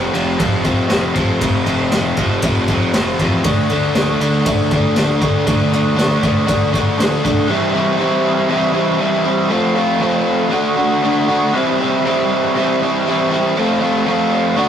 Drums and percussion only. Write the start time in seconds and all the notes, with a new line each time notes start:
0.15 ride
0.40 kick, ride
0.64 kick, ride
0.90 snare, ride
1.15 kick, ride
1.41 kick, ride
1.66 ride
1.92 snare, ride
2.17 kick, ride
2.42 kick, ride
2.68 kick, ride
2.94 snare, ride
3.19 kick, ride
3.44 kick, ride
3.69 ride
3.95 snare, ride
4.21 ride
4.46 kick, ride
4.71 kick, ride
4.96 snare, ride
5.21 kick, ride
5.47 kick, ride
5.73 ride
5.99 snare, ride
6.23 kick, ride
6.48 kick, ride
6.74 kick, ride
7.00 snare, ride
7.25 kick, ride